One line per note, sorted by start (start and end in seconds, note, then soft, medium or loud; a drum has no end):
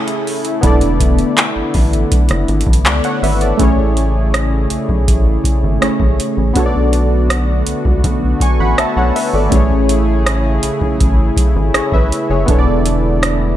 0.00 0.60 C#3 medium
0.00 0.58 A3 medium
0.00 3.55 A3 medium
0.00 0.59 C#4 medium
0.00 0.60 E4 medium
0.00 3.55 E4 medium
0.00 0.60 G#4 medium
0.00 0.61 C#5 medium
0.08 closed hi-hat medium
0.27 open hi-hat medium
0.45 closed hi-hat medium
0.61 1.23 E1 loud
0.61 3.57 D3 medium
0.61 3.54 B3 medium
0.61 3.57 B3 medium
0.61 3.55 D4 medium
0.61 3.56 E4 medium
0.61 kick loud
0.61 closed hi-hat medium
0.66 2.83 A4 medium
0.66 2.83 D5 medium
0.81 closed hi-hat medium
1.00 kick medium
1.00 closed hi-hat medium
1.19 closed hi-hat soft
1.38 clap loud
1.38 closed hi-hat medium
1.56 1.63 A1 soft
1.74 2.05 A1 loud
1.74 kick medium
1.74 open hi-hat medium
1.93 closed hi-hat soft
2.12 kick loud
2.12 closed hi-hat medium
2.29 2.45 F#1 medium
2.29 cross-stick medium
2.29 closed hi-hat medium
2.48 2.63 G#1 loud
2.48 closed hi-hat soft
2.61 closed hi-hat medium
2.67 2.82 A1 medium
2.67 kick medium
2.73 closed hi-hat medium
2.86 3.01 C#2 medium
2.86 3.04 A4 medium
2.86 3.03 D5 medium
2.86 cross-stick loud
2.86 clap loud
2.86 closed hi-hat medium
3.04 3.22 C#5 medium
3.04 3.22 F#5 medium
3.04 closed hi-hat medium
3.23 3.53 G#1 medium
3.23 3.41 B4 medium
3.23 3.40 E5 medium
3.23 open hi-hat medium
3.41 3.77 A4 medium
3.41 3.77 D5 medium
3.41 closed hi-hat medium
3.57 4.67 A1 loud
3.57 6.53 C#3 medium
3.57 5.77 A3 medium
3.57 6.53 A3 medium
3.57 5.77 C#4 medium
3.57 6.53 E4 medium
3.57 5.78 E4 medium
3.57 6.53 G#4 medium
3.57 kick loud
3.57 closed hi-hat medium
3.62 5.79 G#4 medium
3.62 5.80 C#5 medium
3.97 closed hi-hat medium
4.34 cross-stick loud
4.34 closed hi-hat medium
4.70 4.78 B1 soft
4.70 closed hi-hat medium
4.89 5.10 B1 medium
4.89 kick medium
5.08 5.38 A1 loud
5.08 kick medium
5.08 closed hi-hat medium
5.44 kick medium
5.44 closed hi-hat medium
5.63 5.78 G#1 medium
5.81 5.89 A1 soft
5.81 6.55 A3 medium
5.81 6.56 C#4 medium
5.81 6.56 E4 medium
5.81 6.57 G#4 soft
5.81 6.57 C#5 medium
5.81 cross-stick loud
5.81 closed hi-hat medium
6.00 6.15 A1 medium
6.00 kick medium
6.20 closed hi-hat medium
6.37 6.52 A1 medium
6.54 7.63 B1 loud
6.54 9.49 D3 medium
6.54 12.44 A3 medium
6.54 9.47 B3 medium
6.54 9.49 B3 medium
6.54 9.48 D4 medium
6.54 9.49 F#4 medium
6.54 9.48 F#4 medium
6.54 kick loud
6.54 closed hi-hat medium
6.58 8.38 A4 medium
6.58 6.64 C#5 medium
6.66 8.42 D5 medium
6.93 closed hi-hat medium
7.30 cross-stick loud
7.30 closed hi-hat medium
7.67 7.74 C#2 soft
7.67 closed hi-hat medium
7.85 8.00 C#2 medium
7.85 kick medium
8.04 8.34 B1 loud
8.04 kick loud
8.04 closed hi-hat medium
8.40 8.59 G#5 medium
8.40 8.59 C#6 medium
8.40 kick medium
8.40 closed hi-hat medium
8.60 8.75 A1 medium
8.60 8.78 F#5 medium
8.60 8.77 B5 medium
8.78 8.85 B1 soft
8.78 8.96 E5 medium
8.78 8.96 A5 medium
8.78 cross-stick loud
8.78 closed hi-hat medium
8.96 9.12 B1 medium
8.96 9.15 C#5 medium
8.96 9.14 F#5 medium
9.16 9.33 B4 medium
9.16 9.33 E5 medium
9.16 open hi-hat medium
9.34 9.49 G#1 medium
9.34 9.69 A4 medium
9.34 9.69 D5 medium
9.50 10.59 A1 loud
9.50 12.45 C#3 medium
9.50 12.06 A3 medium
9.50 12.07 C#4 medium
9.50 13.57 E4 medium
9.50 12.08 E4 medium
9.50 12.45 G#4 medium
9.50 kick loud
9.50 closed hi-hat medium
9.54 11.71 G#4 medium
9.54 11.72 C#5 medium
9.89 closed hi-hat medium
10.26 cross-stick loud
10.26 closed hi-hat medium
10.63 10.71 B1 soft
10.63 closed hi-hat medium
10.81 11.02 B1 medium
10.81 kick medium
11.00 11.30 A1 loud
11.00 kick loud
11.00 closed hi-hat medium
11.37 kick loud
11.37 closed hi-hat medium
11.56 11.71 G#1 loud
11.74 11.82 A1 soft
11.74 11.93 G#4 medium
11.74 11.92 C#5 medium
11.74 cross-stick loud
11.74 closed hi-hat medium
11.92 12.08 A1 loud
11.92 12.29 B4 medium
11.92 12.28 E5 medium
11.92 kick medium
12.12 closed hi-hat medium
12.30 12.45 F#1 medium
12.30 12.66 G#4 medium
12.30 12.51 C#5 medium
12.46 13.55 E1 loud
12.46 13.57 D3 medium
12.46 13.57 A3 medium
12.46 13.57 B3 medium
12.46 13.57 D4 medium
12.46 13.57 E4 medium
12.46 kick loud
12.46 closed hi-hat medium
12.51 13.57 A4 medium
12.51 12.57 C#5 medium
12.59 13.57 D5 medium
12.86 closed hi-hat medium
13.23 cross-stick loud
13.23 closed hi-hat medium